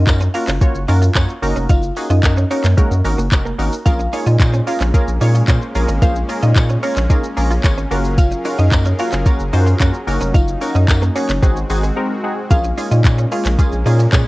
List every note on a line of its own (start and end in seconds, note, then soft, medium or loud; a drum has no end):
0.00 0.18 D#4 medium
0.00 0.18 D#5 medium
0.07 0.28 F#2 loud
0.07 0.23 A#3 medium
0.07 0.23 C#4 medium
0.07 0.23 F4 medium
0.07 0.23 F#4 medium
0.07 0.23 A#4 medium
0.07 kick loud
0.07 clap loud
0.07 closed hi-hat medium
0.07 tambourine medium
0.07 shaker medium
0.21 0.32 C#4 medium
0.21 shaker medium
0.34 0.50 A#3 medium
0.34 0.50 C#4 medium
0.34 0.50 F4 medium
0.34 0.47 F4 medium
0.34 0.50 F#4 medium
0.34 0.50 A#4 medium
0.34 0.46 F5 medium
0.34 muted clean electric guitar stroke medium
0.34 open hi-hat medium
0.34 tambourine soft
0.34 shaker medium
0.48 0.59 F#1 loud
0.48 0.59 C#4 medium
0.48 clap medium
0.48 shaker medium
0.61 0.77 A#3 loud
0.61 0.77 C#4 loud
0.61 0.77 F4 loud
0.61 0.77 F#4 loud
0.61 0.77 C#5 loud
0.61 muted clean electric guitar stroke medium
0.61 kick loud
0.61 closed hi-hat medium
0.61 shaker medium
0.75 0.85 F#1 loud
0.75 shaker medium
0.88 1.10 F#2 loud
0.88 1.04 A#3 medium
0.88 1.04 C#4 medium
0.88 0.99 D#4 medium
0.88 1.04 F4 medium
0.88 1.04 F#4 medium
0.88 1.04 A#4 loud
0.88 open hi-hat medium
0.88 tambourine medium
0.88 shaker medium
1.02 1.13 F4 medium
1.02 shaker medium
1.15 1.26 F#2 loud
1.15 1.31 A#3 loud
1.15 1.31 C#4 medium
1.15 1.26 C#4 loud
1.15 1.31 F4 medium
1.15 1.31 F#4 medium
1.15 1.31 C#5 loud
1.15 kick loud
1.15 clap loud
1.15 closed hi-hat medium
1.15 tambourine medium
1.15 shaker medium
1.29 muted clean electric guitar stroke soft
1.29 shaker soft
1.42 1.53 F#1 loud
1.42 1.86 A#3 loud
1.42 1.86 C#4 medium
1.42 1.86 D#4 medium
1.42 1.86 F#4 medium
1.42 1.86 A#4 loud
1.42 open hi-hat medium
1.42 tambourine medium
1.42 shaker medium
1.56 1.67 F1 medium
1.56 1.67 C#4 medium
1.56 shaker medium
1.69 1.91 F#1 loud
1.69 1.81 D#4 medium
1.69 1.82 F4 medium
1.69 1.81 F5 loud
1.69 kick loud
1.69 closed hi-hat medium
1.69 tambourine medium
1.69 shaker medium
1.83 shaker medium
1.96 2.12 A#3 medium
1.96 2.12 C#4 medium
1.96 2.12 D#4 medium
1.96 2.12 F#4 medium
1.96 2.12 G#4 medium
1.96 muted clean electric guitar stroke soft
1.96 open hi-hat medium
1.96 tambourine soft
1.96 shaker medium
2.10 2.21 F#2 medium
2.10 2.34 D#4 medium
2.10 2.21 F4 medium
2.10 2.34 D#5 medium
2.10 shaker medium
2.23 2.45 F#2 loud
2.23 2.39 A#3 medium
2.23 2.39 C#4 medium
2.23 2.39 D#4 medium
2.23 2.39 F#4 medium
2.23 2.39 A#4 medium
2.23 kick loud
2.23 clap loud
2.23 closed hi-hat medium
2.23 tambourine medium
2.23 shaker medium
2.37 2.48 C#4 medium
2.37 shaker medium
2.50 2.66 A#3 medium
2.50 2.66 C#4 medium
2.50 2.63 C#4 medium
2.50 2.66 D#4 medium
2.50 2.66 F#4 medium
2.50 2.66 A#4 medium
2.50 2.63 C#5 medium
2.50 muted clean electric guitar stroke medium
2.50 open hi-hat medium
2.50 tambourine soft
2.50 shaker medium
2.64 2.75 F#2 medium
2.64 2.75 A#3 medium
2.64 clap medium
2.64 shaker medium
2.77 2.88 G#3 medium
2.77 2.93 A#3 loud
2.77 2.93 C#4 loud
2.77 2.93 D#4 loud
2.77 2.93 F#4 loud
2.77 2.93 A#4 loud
2.77 kick loud
2.77 closed hi-hat medium
2.77 shaker medium
2.91 3.02 F#2 loud
2.91 muted clean electric guitar stroke soft
2.91 shaker medium
3.04 3.15 G#1 medium
3.04 3.20 A#3 loud
3.04 3.20 C#4 medium
3.04 3.20 D#4 medium
3.04 3.20 F#4 medium
3.04 3.20 A#4 loud
3.04 open hi-hat medium
3.04 tambourine medium
3.04 shaker medium
3.18 3.29 F#1 medium
3.18 3.29 A#3 medium
3.18 shaker medium
3.31 3.53 F1 medium
3.31 3.47 A#3 medium
3.31 3.47 C#4 medium
3.31 3.47 D#4 medium
3.31 3.47 F#4 medium
3.31 3.47 A#4 loud
3.31 muted clean electric guitar stroke soft
3.31 kick loud
3.31 clap loud
3.31 closed hi-hat medium
3.31 tambourine medium
3.31 shaker medium
3.45 3.56 A#3 medium
3.45 shaker soft
3.58 3.69 G#1 loud
3.58 3.74 A#3 medium
3.58 3.74 C#4 medium
3.58 3.70 C#4 medium
3.58 3.74 D#4 medium
3.58 3.74 F#4 medium
3.58 3.74 A#4 loud
3.58 open hi-hat medium
3.58 tambourine medium
3.58 shaker medium
3.73 shaker medium
3.85 4.07 A#1 loud
3.85 7.87 G#3 medium
3.85 4.01 A#3 loud
3.85 7.87 A#3 medium
3.85 4.01 C#4 medium
3.85 11.39 C#4 medium
3.85 4.01 F4 medium
3.85 3.98 F4 medium
3.85 4.01 G#4 medium
3.85 4.01 A#4 loud
3.85 3.98 F5 loud
3.85 kick loud
3.85 closed hi-hat medium
3.85 tambourine medium
3.85 shaker medium
4.00 muted clean electric guitar stroke soft
4.00 shaker medium
4.13 4.28 A#3 medium
4.13 4.28 C#4 medium
4.13 4.24 D#4 medium
4.13 4.28 F4 medium
4.13 4.29 G#4 medium
4.13 4.29 C#5 medium
4.13 open hi-hat medium
4.13 tambourine soft
4.13 shaker medium
4.26 4.37 A#2 loud
4.26 4.51 D#4 medium
4.26 4.37 F4 medium
4.26 4.50 D#5 medium
4.26 shaker medium
4.40 4.61 A#2 loud
4.40 4.55 A#3 medium
4.40 4.55 C#4 medium
4.40 4.55 F4 medium
4.40 4.55 G#4 medium
4.40 4.56 C5 medium
4.40 kick loud
4.40 clap loud
4.40 closed hi-hat medium
4.40 tambourine medium
4.40 shaker medium
4.53 4.64 C#4 medium
4.53 shaker medium
4.67 4.82 A#3 medium
4.67 4.82 C#4 medium
4.67 4.82 F4 medium
4.67 4.80 F4 medium
4.67 4.83 G#4 medium
4.67 4.83 A#4 medium
4.67 4.79 F5 medium
4.67 muted clean electric guitar stroke soft
4.67 open hi-hat medium
4.67 tambourine soft
4.67 shaker medium
4.80 4.91 A#1 medium
4.80 4.91 C#4 medium
4.80 clap medium
4.80 shaker medium
4.94 5.09 A#3 loud
4.94 5.09 C#4 loud
4.94 5.10 F4 loud
4.94 5.10 G#4 loud
4.94 5.10 A#4 loud
4.94 muted clean electric guitar stroke soft
4.94 kick loud
4.94 closed hi-hat medium
4.94 tambourine soft
4.94 shaker medium
5.07 5.18 A#1 loud
5.07 shaker medium
5.21 5.42 A#2 loud
5.21 5.36 A#3 loud
5.21 5.37 C#4 medium
5.21 5.32 D#4 medium
5.21 5.37 F4 medium
5.21 5.37 G#4 medium
5.21 5.37 C#5 loud
5.21 open hi-hat medium
5.21 tambourine medium
5.21 shaker medium
5.35 5.45 F4 medium
5.35 shaker medium
5.48 5.59 A#2 loud
5.48 5.63 A#3 loud
5.48 5.64 C#4 medium
5.48 5.59 C#4 medium
5.48 5.64 F4 medium
5.48 5.64 G#4 medium
5.48 5.64 C5 loud
5.48 kick loud
5.48 clap loud
5.48 closed hi-hat medium
5.48 tambourine medium
5.48 shaker medium
5.62 muted clean electric guitar stroke soft
5.62 shaker soft
5.75 5.86 A#1 loud
5.75 5.91 A#3 medium
5.75 5.91 C#4 medium
5.75 5.91 F4 medium
5.75 5.91 G#4 medium
5.75 5.91 A#4 loud
5.75 open hi-hat medium
5.75 tambourine medium
5.75 shaker medium
5.88 5.99 G#1 medium
5.88 5.99 C#4 medium
5.88 shaker medium
6.02 6.23 A#1 loud
6.02 6.17 A#3 loud
6.02 6.13 A#3 medium
6.02 6.17 C#4 medium
6.02 6.18 F4 medium
6.02 6.14 F4 medium
6.02 6.18 G#4 medium
6.02 6.18 C5 loud
6.02 6.14 F5 loud
6.02 kick loud
6.02 closed hi-hat medium
6.02 tambourine medium
6.02 shaker medium
6.16 shaker medium
6.29 6.44 A#3 medium
6.29 6.45 C#4 medium
6.29 6.45 F4 medium
6.29 6.45 G#4 medium
6.29 6.45 A#4 medium
6.29 muted clean electric guitar stroke soft
6.29 open hi-hat medium
6.29 tambourine soft
6.29 shaker medium
6.42 6.53 A#2 loud
6.42 6.67 D#4 medium
6.42 6.53 F4 medium
6.42 6.67 D#5 medium
6.42 shaker medium
6.56 6.77 A#2 loud
6.56 6.71 A#3 medium
6.56 6.72 C#4 medium
6.56 6.72 F4 medium
6.56 6.72 G#4 medium
6.56 6.72 C#5 medium
6.56 kick loud
6.56 clap loud
6.56 closed hi-hat medium
6.56 tambourine medium
6.56 shaker medium
6.69 6.80 C#4 medium
6.69 shaker medium
6.83 6.98 A#3 medium
6.83 6.99 C#4 medium
6.83 6.96 C#4 medium
6.83 6.99 F4 medium
6.83 6.99 G#4 medium
6.83 6.99 A#4 medium
6.83 6.95 C#5 medium
6.83 muted clean electric guitar stroke medium
6.83 open hi-hat medium
6.83 tambourine soft
6.83 shaker medium
6.96 7.07 A#1 medium
6.96 7.07 C#4 medium
6.96 clap medium
6.96 shaker medium
7.10 7.25 A#3 loud
7.10 7.26 C#4 loud
7.10 7.21 D#4 medium
7.10 7.26 F4 loud
7.10 7.26 G#4 loud
7.10 7.26 A#4 loud
7.10 kick loud
7.10 closed hi-hat medium
7.10 tambourine soft
7.10 shaker medium
7.24 muted clean electric guitar stroke soft
7.24 shaker medium
7.37 7.59 A#1 medium
7.37 7.52 A#3 medium
7.37 7.53 C#4 medium
7.37 7.52 F4 medium
7.37 7.53 G#4 medium
7.37 7.53 A#4 loud
7.37 open hi-hat medium
7.37 tambourine medium
7.37 shaker medium
7.51 7.61 F4 medium
7.51 shaker medium
7.63 7.85 G#1 medium
7.63 7.79 A#3 loud
7.63 7.80 C#4 medium
7.63 7.80 F4 medium
7.63 7.80 G#4 medium
7.63 7.80 C#5 loud
7.63 muted clean electric guitar stroke medium
7.63 kick loud
7.63 clap loud
7.63 closed hi-hat medium
7.63 tambourine medium
7.63 shaker medium
7.78 7.88 C#4 medium
7.78 shaker soft
7.91 8.34 F#1 loud
7.91 11.39 F#3 medium
7.91 8.34 A#3 loud
7.91 8.02 A#3 medium
7.91 8.34 C#4 medium
7.91 8.34 F4 medium
7.91 8.34 F#4 medium
7.91 10.05 G#4 medium
7.91 8.34 A#4 loud
7.91 10.05 A#4 medium
7.91 10.05 F5 medium
7.91 open hi-hat medium
7.91 tambourine medium
7.91 shaker medium
8.05 shaker medium
8.18 8.31 F4 medium
8.18 8.30 F5 loud
8.18 kick loud
8.18 closed hi-hat medium
8.18 tambourine medium
8.18 shaker medium
8.31 muted clean electric guitar stroke soft
8.31 shaker medium
8.45 8.61 A#3 medium
8.45 8.61 C#4 medium
8.45 8.56 D#4 medium
8.45 8.61 F4 medium
8.45 8.61 F#4 medium
8.45 8.61 A#4 medium
8.45 open hi-hat medium
8.45 tambourine soft
8.45 shaker medium
8.58 8.69 F#2 loud
8.58 8.83 D#4 medium
8.58 8.70 F4 medium
8.58 8.83 D#5 medium
8.58 shaker medium
8.72 8.93 F#2 loud
8.72 8.88 A#3 medium
8.72 8.88 C#4 medium
8.72 8.88 F4 medium
8.72 8.88 F#4 medium
8.72 8.88 A#4 medium
8.72 kick loud
8.72 clap loud
8.72 closed hi-hat medium
8.72 tambourine medium
8.72 shaker medium
8.85 8.97 C#4 medium
8.85 shaker medium
8.99 9.15 A#3 medium
8.99 9.15 C#4 medium
8.99 9.15 F4 medium
8.99 9.12 F4 medium
8.99 9.15 F#4 medium
8.99 9.15 A#4 medium
8.99 9.11 F5 medium
8.99 muted clean electric guitar stroke soft
8.99 open hi-hat medium
8.99 tambourine soft
8.99 shaker medium
9.12 9.23 F#1 medium
9.12 9.23 C#4 medium
9.12 clap medium
9.12 shaker medium
9.26 9.42 A#3 loud
9.26 9.42 C#4 loud
9.26 9.42 F4 loud
9.26 9.42 F#4 loud
9.26 9.42 A#4 loud
9.26 muted clean electric guitar stroke soft
9.26 kick loud
9.26 closed hi-hat medium
9.26 tambourine soft
9.26 shaker medium
9.40 9.50 F#1 loud
9.40 shaker medium
9.53 9.74 F#2 loud
9.53 9.69 A#3 loud
9.53 9.69 C#4 medium
9.53 9.64 D#4 medium
9.53 9.69 F4 medium
9.53 9.69 F#4 medium
9.53 9.69 C5 loud
9.53 open hi-hat medium
9.53 tambourine medium
9.53 shaker medium
9.67 9.77 F4 medium
9.67 shaker medium
9.80 9.91 F#2 loud
9.80 9.96 A#3 medium
9.80 9.91 C#4 loud
9.80 9.96 C#4 medium
9.80 9.96 F4 medium
9.80 9.96 F#4 medium
9.80 9.96 A#4 loud
9.80 kick loud
9.80 clap loud
9.80 closed hi-hat medium
9.80 tambourine medium
9.80 shaker medium
9.94 muted clean electric guitar stroke soft
9.94 shaker soft
10.07 10.18 F#1 loud
10.07 10.50 A#3 medium
10.07 10.50 C#4 medium
10.07 11.41 D#4 medium
10.07 10.51 D#4 medium
10.07 10.51 F#4 medium
10.07 10.51 A#4 loud
10.07 open hi-hat medium
10.07 tambourine medium
10.07 shaker medium
10.21 10.32 F1 medium
10.21 10.32 C#4 medium
10.21 shaker medium
10.34 10.56 F#1 loud
10.34 10.45 D#4 medium
10.34 10.47 F4 medium
10.34 10.46 F5 loud
10.34 kick loud
10.34 closed hi-hat medium
10.34 tambourine medium
10.34 shaker medium
10.48 shaker medium
10.61 10.77 A#3 medium
10.61 10.77 C#4 medium
10.61 10.77 D#4 medium
10.61 10.77 F#4 medium
10.61 10.77 A#4 medium
10.61 muted clean electric guitar stroke soft
10.61 open hi-hat medium
10.61 tambourine soft
10.61 shaker medium
10.75 10.86 F#2 loud
10.75 10.86 C#4 medium
10.75 10.99 D#4 medium
10.75 10.99 D#5 medium
10.75 shaker medium
10.88 11.10 F#2 loud
10.88 11.04 A#3 medium
10.88 11.04 C#4 medium
10.88 11.04 D#4 medium
10.88 11.04 F#4 medium
10.88 11.04 A#4 medium
10.88 kick loud
10.88 clap loud
10.88 closed hi-hat medium
10.88 tambourine medium
10.88 shaker medium
11.02 11.13 A#3 medium
11.02 shaker medium
11.15 11.31 A#3 medium
11.15 11.31 C#4 medium
11.15 11.28 C#4 medium
11.15 11.31 D#4 medium
11.15 11.31 F#4 medium
11.15 11.31 G#4 medium
11.15 11.28 C#5 medium
11.15 muted clean electric guitar stroke medium
11.15 open hi-hat medium
11.15 tambourine soft
11.15 shaker medium
11.29 11.40 F#1 medium
11.29 11.40 C#4 medium
11.29 clap medium
11.29 shaker medium
11.42 11.64 G#1 loud
11.42 12.49 G#3 medium
11.42 11.58 G#3 loud
11.42 12.49 C4 medium
11.42 11.53 C4 medium
11.42 11.58 C4 loud
11.42 11.58 D#4 loud
11.42 12.49 F#4 medium
11.42 11.58 F#4 loud
11.42 11.58 G#4 loud
11.42 kick loud
11.42 closed hi-hat medium
11.42 tambourine soft
11.42 shaker medium
11.56 muted clean electric guitar stroke soft
11.56 shaker soft
11.70 11.91 G#1 loud
11.70 11.85 G#3 loud
11.70 11.85 C4 medium
11.70 11.85 D#4 medium
11.70 11.85 F#4 medium
11.70 11.85 G#4 loud
11.70 open hi-hat medium
11.70 tambourine medium
11.70 shaker medium
11.83 11.94 G#3 medium
11.83 shaker medium
11.96 12.12 G#3 loud
11.96 12.12 C4 medium
11.96 12.12 D#4 medium
11.96 12.12 F#4 medium
11.96 12.12 A#4 loud
12.23 12.39 G#3 medium
12.23 12.39 C4 medium
12.23 12.39 D#4 medium
12.23 12.39 F#4 medium
12.23 12.39 G#4 loud
12.50 12.72 A#1 loud
12.50 12.66 G#3 loud
12.50 14.28 G#3 medium
12.50 14.28 A#3 medium
12.50 12.66 A#3 medium
12.50 14.28 C#4 medium
12.50 12.66 C#4 medium
12.50 12.66 F4 medium
12.50 12.63 F4 medium
12.50 12.66 G#4 loud
12.50 12.63 F5 loud
12.50 kick loud
12.50 closed hi-hat medium
12.50 tambourine medium
12.50 shaker medium
12.64 muted clean electric guitar stroke soft
12.64 shaker medium
12.77 12.93 G#3 medium
12.77 12.93 A#3 medium
12.77 12.93 C#4 medium
12.77 12.88 D#4 medium
12.77 12.93 F4 medium
12.77 12.93 G#4 medium
12.77 open hi-hat medium
12.77 tambourine soft
12.77 shaker medium
12.91 13.02 A#2 loud
12.91 13.16 D#4 medium
12.91 13.02 F4 medium
12.91 13.15 D#5 medium
12.91 shaker medium
13.04 13.26 A#2 loud
13.04 13.20 G#3 medium
13.04 13.20 A#3 medium
13.04 13.20 C#4 medium
13.04 13.20 F4 medium
13.04 13.20 G#4 medium
13.04 kick loud
13.04 clap loud
13.04 closed hi-hat medium
13.04 tambourine medium
13.04 shaker medium
13.18 13.29 C#4 medium
13.18 shaker medium
13.31 13.47 G#3 medium
13.31 13.47 A#3 medium
13.31 13.47 C#4 medium
13.31 13.47 F4 medium
13.31 13.44 F4 medium
13.31 13.47 G#4 medium
13.31 13.44 F5 medium
13.31 muted clean electric guitar stroke soft
13.31 open hi-hat medium
13.31 shaker medium
13.45 13.56 A#1 medium
13.45 13.56 C#4 medium
13.45 clap medium
13.45 shaker medium
13.59 13.74 G#3 loud
13.59 13.74 A#3 loud
13.59 13.74 C#4 loud
13.59 13.74 F4 loud
13.59 13.75 G#4 loud
13.59 muted clean electric guitar stroke soft
13.59 kick loud
13.59 closed hi-hat medium
13.59 tambourine soft
13.59 shaker medium
13.72 13.83 A#1 loud
13.72 shaker medium
13.86 14.07 A#2 loud
13.86 14.01 G#3 loud
13.86 14.01 A#3 medium
13.86 14.01 C#4 medium
13.86 13.97 D#4 medium
13.86 14.01 F4 medium
13.86 14.02 G#4 loud
13.86 open hi-hat medium
13.86 tambourine medium
13.86 shaker medium
13.99 14.10 F4 medium
13.99 shaker medium
14.12 14.23 A#2 loud
14.12 14.28 G#3 loud
14.12 14.28 A#3 medium
14.12 14.28 C#4 medium
14.12 14.24 C#4 medium
14.12 14.28 F4 medium
14.12 14.28 G#4 loud
14.12 kick loud
14.12 clap loud
14.12 closed hi-hat medium
14.12 tambourine medium
14.12 shaker medium